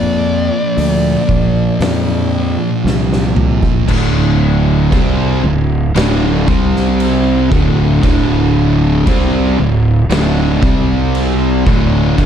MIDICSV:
0, 0, Header, 1, 6, 480
1, 0, Start_track
1, 0, Key_signature, -1, "minor"
1, 0, Tempo, 1038062
1, 1795, Time_signature, 4, 2, 24, 8
1, 5668, End_track
2, 0, Start_track
2, 0, Title_t, "Lead electric guitar"
2, 0, Program_c, 0, 29
2, 0, Note_on_c, 0, 74, 83
2, 1539, Note_off_c, 0, 74, 0
2, 5668, End_track
3, 0, Start_track
3, 0, Title_t, "Distorted electric guitar"
3, 0, Program_c, 1, 30
3, 1548, Note_on_c, 1, 58, 93
3, 1556, Note_on_c, 1, 53, 77
3, 1563, Note_on_c, 1, 46, 66
3, 1777, Note_off_c, 1, 58, 0
3, 1781, Note_off_c, 1, 53, 0
3, 1784, Note_off_c, 1, 46, 0
3, 5668, End_track
4, 0, Start_track
4, 0, Title_t, "Distorted electric guitar"
4, 0, Program_c, 2, 30
4, 0, Note_on_c, 2, 46, 89
4, 0, Note_on_c, 2, 53, 84
4, 0, Note_on_c, 2, 58, 97
4, 575, Note_off_c, 2, 46, 0
4, 578, Note_off_c, 2, 53, 0
4, 580, Note_off_c, 2, 58, 0
4, 587, Note_on_c, 2, 58, 82
4, 592, Note_on_c, 2, 53, 74
4, 600, Note_on_c, 2, 46, 76
4, 1777, Note_off_c, 2, 58, 0
4, 1779, Note_off_c, 2, 53, 0
4, 1783, Note_off_c, 2, 46, 0
4, 1792, Note_on_c, 2, 38, 112
4, 1794, Note_on_c, 2, 45, 104
4, 1796, Note_on_c, 2, 50, 112
4, 2266, Note_off_c, 2, 38, 0
4, 2267, Note_off_c, 2, 45, 0
4, 2268, Note_off_c, 2, 50, 0
4, 2272, Note_on_c, 2, 48, 98
4, 2277, Note_on_c, 2, 55, 104
4, 2278, Note_on_c, 2, 60, 107
4, 2506, Note_off_c, 2, 48, 0
4, 2508, Note_off_c, 2, 55, 0
4, 2509, Note_off_c, 2, 60, 0
4, 2518, Note_on_c, 2, 38, 73
4, 2520, Note_on_c, 2, 45, 73
4, 2708, Note_off_c, 2, 38, 0
4, 2709, Note_off_c, 2, 45, 0
4, 2754, Note_on_c, 2, 38, 91
4, 2755, Note_on_c, 2, 45, 90
4, 2755, Note_on_c, 2, 50, 94
4, 2987, Note_off_c, 2, 38, 0
4, 2987, Note_off_c, 2, 45, 0
4, 2987, Note_off_c, 2, 50, 0
4, 2995, Note_on_c, 2, 48, 97
4, 2998, Note_on_c, 2, 55, 114
4, 2999, Note_on_c, 2, 60, 106
4, 3467, Note_off_c, 2, 48, 0
4, 3469, Note_off_c, 2, 55, 0
4, 3469, Note_off_c, 2, 60, 0
4, 3471, Note_on_c, 2, 38, 109
4, 3472, Note_on_c, 2, 45, 100
4, 3474, Note_on_c, 2, 50, 110
4, 3705, Note_off_c, 2, 38, 0
4, 3706, Note_off_c, 2, 45, 0
4, 3707, Note_off_c, 2, 50, 0
4, 3713, Note_on_c, 2, 45, 108
4, 3714, Note_on_c, 2, 38, 101
4, 3715, Note_on_c, 2, 50, 113
4, 4186, Note_off_c, 2, 38, 0
4, 4186, Note_off_c, 2, 45, 0
4, 4187, Note_off_c, 2, 50, 0
4, 4188, Note_on_c, 2, 48, 112
4, 4193, Note_on_c, 2, 55, 111
4, 4194, Note_on_c, 2, 60, 96
4, 4424, Note_off_c, 2, 48, 0
4, 4426, Note_off_c, 2, 55, 0
4, 4427, Note_off_c, 2, 60, 0
4, 4439, Note_on_c, 2, 38, 62
4, 4442, Note_on_c, 2, 45, 77
4, 4628, Note_off_c, 2, 38, 0
4, 4630, Note_off_c, 2, 45, 0
4, 4676, Note_on_c, 2, 38, 82
4, 4680, Note_on_c, 2, 45, 112
4, 4681, Note_on_c, 2, 50, 100
4, 4908, Note_off_c, 2, 38, 0
4, 4910, Note_off_c, 2, 45, 0
4, 4910, Note_off_c, 2, 50, 0
4, 4916, Note_on_c, 2, 48, 99
4, 4916, Note_on_c, 2, 55, 115
4, 4920, Note_on_c, 2, 60, 107
4, 5387, Note_off_c, 2, 55, 0
4, 5388, Note_off_c, 2, 48, 0
4, 5390, Note_off_c, 2, 60, 0
4, 5393, Note_on_c, 2, 38, 96
4, 5396, Note_on_c, 2, 45, 109
4, 5398, Note_on_c, 2, 50, 103
4, 5626, Note_off_c, 2, 38, 0
4, 5626, Note_off_c, 2, 50, 0
4, 5627, Note_off_c, 2, 45, 0
4, 5631, Note_on_c, 2, 50, 114
4, 5632, Note_on_c, 2, 43, 106
4, 5636, Note_on_c, 2, 55, 112
4, 5668, Note_off_c, 2, 43, 0
4, 5668, Note_off_c, 2, 50, 0
4, 5668, Note_off_c, 2, 55, 0
4, 5668, End_track
5, 0, Start_track
5, 0, Title_t, "Fingered electric bass"
5, 0, Program_c, 3, 33
5, 0, Note_on_c, 3, 41, 95
5, 225, Note_off_c, 3, 41, 0
5, 356, Note_on_c, 3, 38, 93
5, 530, Note_off_c, 3, 38, 0
5, 598, Note_on_c, 3, 34, 88
5, 772, Note_off_c, 3, 34, 0
5, 829, Note_on_c, 3, 41, 96
5, 1181, Note_off_c, 3, 41, 0
5, 1314, Note_on_c, 3, 36, 91
5, 1664, Note_off_c, 3, 36, 0
5, 1797, Note_on_c, 3, 26, 95
5, 2257, Note_off_c, 3, 26, 0
5, 2277, Note_on_c, 3, 36, 100
5, 2499, Note_off_c, 3, 36, 0
5, 2514, Note_on_c, 3, 26, 86
5, 2737, Note_off_c, 3, 26, 0
5, 2754, Note_on_c, 3, 26, 101
5, 2977, Note_off_c, 3, 26, 0
5, 2997, Note_on_c, 3, 36, 95
5, 3457, Note_off_c, 3, 36, 0
5, 3477, Note_on_c, 3, 26, 99
5, 3699, Note_off_c, 3, 26, 0
5, 3716, Note_on_c, 3, 26, 101
5, 4176, Note_off_c, 3, 26, 0
5, 4196, Note_on_c, 3, 36, 100
5, 4418, Note_off_c, 3, 36, 0
5, 4435, Note_on_c, 3, 26, 91
5, 4657, Note_off_c, 3, 26, 0
5, 4666, Note_on_c, 3, 26, 108
5, 4893, Note_off_c, 3, 26, 0
5, 4911, Note_on_c, 3, 36, 96
5, 5374, Note_off_c, 3, 36, 0
5, 5393, Note_on_c, 3, 26, 97
5, 5617, Note_off_c, 3, 26, 0
5, 5634, Note_on_c, 3, 31, 108
5, 5668, Note_off_c, 3, 31, 0
5, 5668, End_track
6, 0, Start_track
6, 0, Title_t, "Drums"
6, 359, Note_on_c, 9, 46, 59
6, 405, Note_off_c, 9, 46, 0
6, 596, Note_on_c, 9, 36, 78
6, 642, Note_off_c, 9, 36, 0
6, 834, Note_on_c, 9, 46, 59
6, 843, Note_on_c, 9, 38, 117
6, 881, Note_off_c, 9, 46, 0
6, 889, Note_off_c, 9, 38, 0
6, 1326, Note_on_c, 9, 38, 67
6, 1372, Note_off_c, 9, 38, 0
6, 1445, Note_on_c, 9, 38, 61
6, 1492, Note_off_c, 9, 38, 0
6, 1556, Note_on_c, 9, 45, 92
6, 1602, Note_off_c, 9, 45, 0
6, 1677, Note_on_c, 9, 36, 80
6, 1723, Note_off_c, 9, 36, 0
6, 1796, Note_on_c, 9, 36, 101
6, 1797, Note_on_c, 9, 49, 119
6, 1797, Note_on_c, 9, 57, 59
6, 1842, Note_off_c, 9, 36, 0
6, 1844, Note_off_c, 9, 49, 0
6, 1844, Note_off_c, 9, 57, 0
6, 2277, Note_on_c, 9, 36, 111
6, 2278, Note_on_c, 9, 57, 67
6, 2323, Note_off_c, 9, 36, 0
6, 2324, Note_off_c, 9, 57, 0
6, 2755, Note_on_c, 9, 57, 72
6, 2763, Note_on_c, 9, 38, 120
6, 2801, Note_off_c, 9, 57, 0
6, 2809, Note_off_c, 9, 38, 0
6, 2996, Note_on_c, 9, 36, 115
6, 3043, Note_off_c, 9, 36, 0
6, 3126, Note_on_c, 9, 38, 32
6, 3172, Note_off_c, 9, 38, 0
6, 3237, Note_on_c, 9, 57, 74
6, 3283, Note_off_c, 9, 57, 0
6, 3476, Note_on_c, 9, 36, 116
6, 3522, Note_off_c, 9, 36, 0
6, 3715, Note_on_c, 9, 36, 112
6, 3717, Note_on_c, 9, 57, 70
6, 3761, Note_off_c, 9, 36, 0
6, 3763, Note_off_c, 9, 57, 0
6, 4194, Note_on_c, 9, 36, 111
6, 4194, Note_on_c, 9, 57, 72
6, 4240, Note_off_c, 9, 57, 0
6, 4241, Note_off_c, 9, 36, 0
6, 4673, Note_on_c, 9, 57, 69
6, 4681, Note_on_c, 9, 38, 117
6, 4719, Note_off_c, 9, 57, 0
6, 4727, Note_off_c, 9, 38, 0
6, 4914, Note_on_c, 9, 36, 122
6, 4960, Note_off_c, 9, 36, 0
6, 5155, Note_on_c, 9, 57, 61
6, 5201, Note_off_c, 9, 57, 0
6, 5394, Note_on_c, 9, 36, 114
6, 5440, Note_off_c, 9, 36, 0
6, 5634, Note_on_c, 9, 36, 104
6, 5636, Note_on_c, 9, 57, 64
6, 5668, Note_off_c, 9, 36, 0
6, 5668, Note_off_c, 9, 57, 0
6, 5668, End_track
0, 0, End_of_file